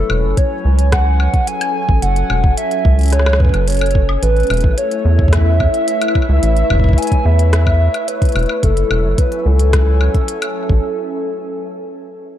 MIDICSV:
0, 0, Header, 1, 6, 480
1, 0, Start_track
1, 0, Tempo, 550459
1, 1766, Time_signature, 4, 2, 24, 8
1, 10797, End_track
2, 0, Start_track
2, 0, Title_t, "Synth texture"
2, 0, Program_c, 0, 99
2, 3685, Note_on_c, 0, 76, 84
2, 9445, Note_off_c, 0, 76, 0
2, 10797, End_track
3, 0, Start_track
3, 0, Title_t, "Soft synth lead"
3, 0, Program_c, 1, 80
3, 0, Note_on_c, 1, 69, 106
3, 325, Note_on_c, 1, 73, 105
3, 338, Note_off_c, 1, 69, 0
3, 800, Note_off_c, 1, 73, 0
3, 805, Note_on_c, 1, 78, 107
3, 1285, Note_on_c, 1, 80, 112
3, 1298, Note_off_c, 1, 78, 0
3, 1759, Note_off_c, 1, 80, 0
3, 1764, Note_on_c, 1, 78, 116
3, 2211, Note_off_c, 1, 78, 0
3, 2245, Note_on_c, 1, 76, 102
3, 2725, Note_on_c, 1, 73, 102
3, 2738, Note_off_c, 1, 76, 0
3, 2966, Note_on_c, 1, 71, 93
3, 2979, Note_off_c, 1, 73, 0
3, 3206, Note_on_c, 1, 73, 101
3, 3219, Note_off_c, 1, 71, 0
3, 3679, Note_off_c, 1, 73, 0
3, 3684, Note_on_c, 1, 71, 106
3, 4166, Note_on_c, 1, 73, 100
3, 4179, Note_off_c, 1, 71, 0
3, 4645, Note_on_c, 1, 76, 109
3, 4658, Note_off_c, 1, 73, 0
3, 5600, Note_off_c, 1, 76, 0
3, 5606, Note_on_c, 1, 76, 112
3, 6088, Note_on_c, 1, 80, 102
3, 6101, Note_off_c, 1, 76, 0
3, 6326, Note_on_c, 1, 76, 107
3, 6339, Note_off_c, 1, 80, 0
3, 7047, Note_on_c, 1, 71, 92
3, 7060, Note_off_c, 1, 76, 0
3, 7524, Note_off_c, 1, 71, 0
3, 7529, Note_on_c, 1, 69, 99
3, 8008, Note_on_c, 1, 71, 89
3, 8022, Note_off_c, 1, 69, 0
3, 8249, Note_on_c, 1, 69, 92
3, 8262, Note_off_c, 1, 71, 0
3, 10797, Note_off_c, 1, 69, 0
3, 10797, End_track
4, 0, Start_track
4, 0, Title_t, "Ambient pad"
4, 0, Program_c, 2, 92
4, 0, Note_on_c, 2, 54, 84
4, 0, Note_on_c, 2, 61, 68
4, 0, Note_on_c, 2, 64, 75
4, 0, Note_on_c, 2, 71, 87
4, 0, Note_on_c, 2, 73, 86
4, 53, Note_on_c, 2, 80, 86
4, 617, Note_off_c, 2, 64, 0
4, 1028, Note_off_c, 2, 71, 0
4, 1028, Note_on_c, 2, 69, 73
4, 1217, Note_off_c, 2, 73, 0
4, 3686, Note_off_c, 2, 54, 0
4, 3686, Note_on_c, 2, 57, 71
4, 3855, Note_on_c, 2, 64, 87
4, 4023, Note_on_c, 2, 73, 80
4, 4474, Note_off_c, 2, 61, 0
4, 4674, Note_off_c, 2, 80, 0
4, 4796, Note_off_c, 2, 69, 0
4, 4849, Note_on_c, 2, 71, 72
4, 7526, Note_off_c, 2, 57, 0
4, 7527, Note_on_c, 2, 54, 85
4, 7948, Note_on_c, 2, 80, 75
4, 8090, Note_on_c, 2, 61, 72
4, 8684, Note_on_c, 2, 69, 78
4, 8997, Note_off_c, 2, 73, 0
4, 9062, Note_off_c, 2, 64, 0
4, 9062, Note_off_c, 2, 71, 0
4, 9445, Note_off_c, 2, 61, 0
4, 9446, Note_off_c, 2, 54, 0
4, 9446, Note_off_c, 2, 80, 0
4, 9447, Note_off_c, 2, 69, 0
4, 10797, End_track
5, 0, Start_track
5, 0, Title_t, "Analog synth bass"
5, 0, Program_c, 3, 38
5, 87, Note_on_c, 3, 28, 106
5, 208, Note_on_c, 3, 30, 89
5, 221, Note_off_c, 3, 28, 0
5, 297, Note_off_c, 3, 30, 0
5, 567, Note_on_c, 3, 37, 103
5, 1119, Note_off_c, 3, 37, 0
5, 1645, Note_on_c, 3, 33, 100
5, 1736, Note_off_c, 3, 33, 0
5, 1767, Note_on_c, 3, 30, 98
5, 1947, Note_off_c, 3, 30, 0
5, 2007, Note_on_c, 3, 28, 107
5, 2125, Note_on_c, 3, 30, 87
5, 2139, Note_off_c, 3, 28, 0
5, 2216, Note_off_c, 3, 30, 0
5, 2485, Note_on_c, 3, 37, 105
5, 3038, Note_off_c, 3, 37, 0
5, 3087, Note_on_c, 3, 30, 85
5, 3639, Note_off_c, 3, 30, 0
5, 3686, Note_on_c, 3, 33, 99
5, 3867, Note_off_c, 3, 33, 0
5, 3926, Note_on_c, 3, 28, 107
5, 4045, Note_on_c, 3, 33, 88
5, 4059, Note_off_c, 3, 28, 0
5, 4136, Note_off_c, 3, 33, 0
5, 4404, Note_on_c, 3, 40, 104
5, 4958, Note_off_c, 3, 40, 0
5, 5486, Note_on_c, 3, 37, 98
5, 5576, Note_off_c, 3, 37, 0
5, 5606, Note_on_c, 3, 33, 97
5, 5787, Note_off_c, 3, 33, 0
5, 5845, Note_on_c, 3, 28, 106
5, 5965, Note_on_c, 3, 33, 86
5, 5979, Note_off_c, 3, 28, 0
5, 6056, Note_off_c, 3, 33, 0
5, 6324, Note_on_c, 3, 40, 104
5, 6878, Note_off_c, 3, 40, 0
5, 7285, Note_on_c, 3, 28, 93
5, 7376, Note_off_c, 3, 28, 0
5, 7526, Note_on_c, 3, 30, 99
5, 7707, Note_off_c, 3, 30, 0
5, 7766, Note_on_c, 3, 28, 103
5, 7886, Note_on_c, 3, 30, 90
5, 7899, Note_off_c, 3, 28, 0
5, 7976, Note_off_c, 3, 30, 0
5, 8246, Note_on_c, 3, 37, 104
5, 8799, Note_off_c, 3, 37, 0
5, 9326, Note_on_c, 3, 33, 97
5, 9416, Note_off_c, 3, 33, 0
5, 10797, End_track
6, 0, Start_track
6, 0, Title_t, "Drums"
6, 85, Note_on_c, 9, 76, 77
6, 172, Note_off_c, 9, 76, 0
6, 325, Note_on_c, 9, 36, 107
6, 325, Note_on_c, 9, 42, 80
6, 413, Note_off_c, 9, 36, 0
6, 413, Note_off_c, 9, 42, 0
6, 685, Note_on_c, 9, 42, 54
6, 772, Note_off_c, 9, 42, 0
6, 805, Note_on_c, 9, 36, 120
6, 806, Note_on_c, 9, 37, 121
6, 806, Note_on_c, 9, 42, 79
6, 806, Note_on_c, 9, 76, 35
6, 892, Note_off_c, 9, 36, 0
6, 893, Note_off_c, 9, 37, 0
6, 893, Note_off_c, 9, 42, 0
6, 893, Note_off_c, 9, 76, 0
6, 1045, Note_on_c, 9, 76, 59
6, 1132, Note_off_c, 9, 76, 0
6, 1165, Note_on_c, 9, 36, 108
6, 1165, Note_on_c, 9, 42, 37
6, 1252, Note_off_c, 9, 36, 0
6, 1252, Note_off_c, 9, 42, 0
6, 1285, Note_on_c, 9, 42, 80
6, 1372, Note_off_c, 9, 42, 0
6, 1405, Note_on_c, 9, 42, 54
6, 1405, Note_on_c, 9, 76, 75
6, 1492, Note_off_c, 9, 42, 0
6, 1492, Note_off_c, 9, 76, 0
6, 1645, Note_on_c, 9, 36, 106
6, 1732, Note_off_c, 9, 36, 0
6, 1765, Note_on_c, 9, 42, 76
6, 1852, Note_off_c, 9, 42, 0
6, 1886, Note_on_c, 9, 42, 37
6, 1973, Note_off_c, 9, 42, 0
6, 2005, Note_on_c, 9, 76, 74
6, 2092, Note_off_c, 9, 76, 0
6, 2125, Note_on_c, 9, 36, 126
6, 2212, Note_off_c, 9, 36, 0
6, 2245, Note_on_c, 9, 42, 77
6, 2332, Note_off_c, 9, 42, 0
6, 2365, Note_on_c, 9, 42, 35
6, 2453, Note_off_c, 9, 42, 0
6, 2485, Note_on_c, 9, 36, 110
6, 2572, Note_off_c, 9, 36, 0
6, 2606, Note_on_c, 9, 42, 23
6, 2626, Note_off_c, 9, 42, 0
6, 2626, Note_on_c, 9, 42, 27
6, 2645, Note_off_c, 9, 42, 0
6, 2645, Note_on_c, 9, 42, 32
6, 2666, Note_off_c, 9, 42, 0
6, 2666, Note_on_c, 9, 42, 37
6, 2686, Note_off_c, 9, 42, 0
6, 2686, Note_on_c, 9, 42, 40
6, 2705, Note_off_c, 9, 42, 0
6, 2705, Note_on_c, 9, 42, 45
6, 2725, Note_off_c, 9, 42, 0
6, 2725, Note_on_c, 9, 37, 53
6, 2725, Note_on_c, 9, 42, 75
6, 2785, Note_off_c, 9, 37, 0
6, 2785, Note_on_c, 9, 37, 69
6, 2812, Note_off_c, 9, 42, 0
6, 2846, Note_off_c, 9, 37, 0
6, 2846, Note_on_c, 9, 37, 82
6, 2846, Note_on_c, 9, 76, 74
6, 2906, Note_off_c, 9, 37, 0
6, 2906, Note_on_c, 9, 37, 101
6, 2933, Note_off_c, 9, 76, 0
6, 2965, Note_on_c, 9, 36, 104
6, 2993, Note_off_c, 9, 37, 0
6, 3005, Note_off_c, 9, 36, 0
6, 3005, Note_on_c, 9, 36, 84
6, 3045, Note_off_c, 9, 36, 0
6, 3045, Note_on_c, 9, 36, 67
6, 3085, Note_on_c, 9, 42, 36
6, 3085, Note_on_c, 9, 76, 49
6, 3132, Note_off_c, 9, 36, 0
6, 3172, Note_off_c, 9, 42, 0
6, 3172, Note_off_c, 9, 76, 0
6, 3205, Note_on_c, 9, 42, 75
6, 3225, Note_off_c, 9, 42, 0
6, 3225, Note_on_c, 9, 42, 58
6, 3246, Note_off_c, 9, 42, 0
6, 3246, Note_on_c, 9, 42, 51
6, 3265, Note_off_c, 9, 42, 0
6, 3265, Note_on_c, 9, 42, 41
6, 3286, Note_off_c, 9, 42, 0
6, 3286, Note_on_c, 9, 42, 33
6, 3305, Note_off_c, 9, 42, 0
6, 3305, Note_on_c, 9, 42, 28
6, 3326, Note_off_c, 9, 42, 0
6, 3326, Note_on_c, 9, 42, 23
6, 3326, Note_on_c, 9, 76, 74
6, 3366, Note_off_c, 9, 42, 0
6, 3366, Note_on_c, 9, 42, 32
6, 3406, Note_off_c, 9, 42, 0
6, 3406, Note_on_c, 9, 42, 40
6, 3413, Note_off_c, 9, 76, 0
6, 3445, Note_on_c, 9, 36, 120
6, 3493, Note_off_c, 9, 42, 0
6, 3533, Note_off_c, 9, 36, 0
6, 3566, Note_on_c, 9, 76, 59
6, 3653, Note_off_c, 9, 76, 0
6, 3685, Note_on_c, 9, 42, 74
6, 3773, Note_off_c, 9, 42, 0
6, 3806, Note_on_c, 9, 42, 16
6, 3836, Note_off_c, 9, 42, 0
6, 3836, Note_on_c, 9, 42, 18
6, 3866, Note_off_c, 9, 42, 0
6, 3866, Note_on_c, 9, 42, 20
6, 3897, Note_off_c, 9, 42, 0
6, 3897, Note_on_c, 9, 42, 22
6, 3926, Note_off_c, 9, 42, 0
6, 3926, Note_on_c, 9, 42, 25
6, 3926, Note_on_c, 9, 76, 76
6, 3956, Note_off_c, 9, 42, 0
6, 3956, Note_on_c, 9, 42, 27
6, 3986, Note_off_c, 9, 42, 0
6, 3986, Note_on_c, 9, 42, 29
6, 4013, Note_off_c, 9, 76, 0
6, 4016, Note_off_c, 9, 42, 0
6, 4016, Note_on_c, 9, 42, 31
6, 4045, Note_on_c, 9, 36, 108
6, 4103, Note_off_c, 9, 42, 0
6, 4133, Note_off_c, 9, 36, 0
6, 4166, Note_on_c, 9, 42, 76
6, 4253, Note_off_c, 9, 42, 0
6, 4285, Note_on_c, 9, 42, 36
6, 4373, Note_off_c, 9, 42, 0
6, 4525, Note_on_c, 9, 36, 107
6, 4605, Note_off_c, 9, 36, 0
6, 4605, Note_on_c, 9, 36, 89
6, 4645, Note_on_c, 9, 37, 118
6, 4645, Note_on_c, 9, 42, 74
6, 4645, Note_on_c, 9, 76, 35
6, 4685, Note_off_c, 9, 36, 0
6, 4685, Note_on_c, 9, 36, 74
6, 4732, Note_off_c, 9, 37, 0
6, 4732, Note_off_c, 9, 42, 0
6, 4732, Note_off_c, 9, 76, 0
6, 4772, Note_off_c, 9, 36, 0
6, 4885, Note_on_c, 9, 36, 102
6, 4885, Note_on_c, 9, 76, 58
6, 4972, Note_off_c, 9, 36, 0
6, 4972, Note_off_c, 9, 76, 0
6, 5005, Note_on_c, 9, 42, 35
6, 5092, Note_off_c, 9, 42, 0
6, 5125, Note_on_c, 9, 42, 74
6, 5213, Note_off_c, 9, 42, 0
6, 5245, Note_on_c, 9, 42, 50
6, 5245, Note_on_c, 9, 76, 72
6, 5305, Note_off_c, 9, 76, 0
6, 5305, Note_on_c, 9, 76, 59
6, 5332, Note_off_c, 9, 42, 0
6, 5365, Note_off_c, 9, 76, 0
6, 5365, Note_on_c, 9, 36, 103
6, 5365, Note_on_c, 9, 76, 47
6, 5425, Note_off_c, 9, 76, 0
6, 5425, Note_on_c, 9, 76, 39
6, 5452, Note_off_c, 9, 36, 0
6, 5513, Note_off_c, 9, 76, 0
6, 5605, Note_on_c, 9, 42, 72
6, 5693, Note_off_c, 9, 42, 0
6, 5725, Note_on_c, 9, 42, 36
6, 5812, Note_off_c, 9, 42, 0
6, 5845, Note_on_c, 9, 36, 51
6, 5845, Note_on_c, 9, 76, 79
6, 5885, Note_off_c, 9, 36, 0
6, 5885, Note_on_c, 9, 36, 62
6, 5925, Note_off_c, 9, 36, 0
6, 5925, Note_on_c, 9, 36, 70
6, 5932, Note_off_c, 9, 76, 0
6, 5965, Note_off_c, 9, 36, 0
6, 5965, Note_on_c, 9, 36, 83
6, 6005, Note_off_c, 9, 36, 0
6, 6005, Note_on_c, 9, 36, 92
6, 6045, Note_off_c, 9, 36, 0
6, 6045, Note_on_c, 9, 36, 101
6, 6085, Note_on_c, 9, 42, 74
6, 6126, Note_off_c, 9, 42, 0
6, 6126, Note_on_c, 9, 42, 60
6, 6132, Note_off_c, 9, 36, 0
6, 6166, Note_off_c, 9, 42, 0
6, 6166, Note_on_c, 9, 42, 47
6, 6205, Note_on_c, 9, 36, 99
6, 6206, Note_off_c, 9, 42, 0
6, 6206, Note_on_c, 9, 42, 35
6, 6292, Note_off_c, 9, 36, 0
6, 6293, Note_off_c, 9, 42, 0
6, 6446, Note_on_c, 9, 42, 51
6, 6533, Note_off_c, 9, 42, 0
6, 6566, Note_on_c, 9, 37, 114
6, 6566, Note_on_c, 9, 42, 73
6, 6653, Note_off_c, 9, 37, 0
6, 6653, Note_off_c, 9, 42, 0
6, 6685, Note_on_c, 9, 36, 100
6, 6686, Note_on_c, 9, 76, 76
6, 6772, Note_off_c, 9, 36, 0
6, 6773, Note_off_c, 9, 76, 0
6, 6926, Note_on_c, 9, 42, 34
6, 6926, Note_on_c, 9, 76, 52
6, 7013, Note_off_c, 9, 42, 0
6, 7013, Note_off_c, 9, 76, 0
6, 7046, Note_on_c, 9, 42, 74
6, 7133, Note_off_c, 9, 42, 0
6, 7165, Note_on_c, 9, 36, 117
6, 7167, Note_on_c, 9, 42, 48
6, 7196, Note_off_c, 9, 42, 0
6, 7196, Note_on_c, 9, 42, 39
6, 7227, Note_off_c, 9, 42, 0
6, 7227, Note_on_c, 9, 42, 31
6, 7253, Note_off_c, 9, 36, 0
6, 7257, Note_off_c, 9, 42, 0
6, 7257, Note_on_c, 9, 42, 27
6, 7286, Note_off_c, 9, 42, 0
6, 7286, Note_on_c, 9, 42, 21
6, 7286, Note_on_c, 9, 76, 76
6, 7317, Note_off_c, 9, 42, 0
6, 7317, Note_on_c, 9, 42, 17
6, 7347, Note_off_c, 9, 42, 0
6, 7347, Note_on_c, 9, 42, 14
6, 7373, Note_off_c, 9, 76, 0
6, 7377, Note_off_c, 9, 42, 0
6, 7377, Note_on_c, 9, 42, 12
6, 7407, Note_on_c, 9, 76, 60
6, 7464, Note_off_c, 9, 42, 0
6, 7494, Note_off_c, 9, 76, 0
6, 7525, Note_on_c, 9, 36, 98
6, 7526, Note_on_c, 9, 42, 76
6, 7613, Note_off_c, 9, 36, 0
6, 7613, Note_off_c, 9, 42, 0
6, 7646, Note_on_c, 9, 42, 37
6, 7734, Note_off_c, 9, 42, 0
6, 7766, Note_on_c, 9, 76, 80
6, 7853, Note_off_c, 9, 76, 0
6, 8006, Note_on_c, 9, 36, 101
6, 8006, Note_on_c, 9, 42, 79
6, 8093, Note_off_c, 9, 36, 0
6, 8093, Note_off_c, 9, 42, 0
6, 8125, Note_on_c, 9, 42, 36
6, 8212, Note_off_c, 9, 42, 0
6, 8366, Note_on_c, 9, 42, 51
6, 8453, Note_off_c, 9, 42, 0
6, 8486, Note_on_c, 9, 36, 112
6, 8486, Note_on_c, 9, 37, 111
6, 8486, Note_on_c, 9, 42, 75
6, 8486, Note_on_c, 9, 76, 37
6, 8573, Note_off_c, 9, 36, 0
6, 8573, Note_off_c, 9, 37, 0
6, 8573, Note_off_c, 9, 42, 0
6, 8573, Note_off_c, 9, 76, 0
6, 8726, Note_on_c, 9, 76, 64
6, 8813, Note_off_c, 9, 76, 0
6, 8846, Note_on_c, 9, 36, 99
6, 8846, Note_on_c, 9, 42, 35
6, 8933, Note_off_c, 9, 36, 0
6, 8933, Note_off_c, 9, 42, 0
6, 8966, Note_on_c, 9, 42, 80
6, 9053, Note_off_c, 9, 42, 0
6, 9086, Note_on_c, 9, 42, 50
6, 9086, Note_on_c, 9, 76, 79
6, 9173, Note_off_c, 9, 42, 0
6, 9173, Note_off_c, 9, 76, 0
6, 9326, Note_on_c, 9, 36, 95
6, 9413, Note_off_c, 9, 36, 0
6, 10797, End_track
0, 0, End_of_file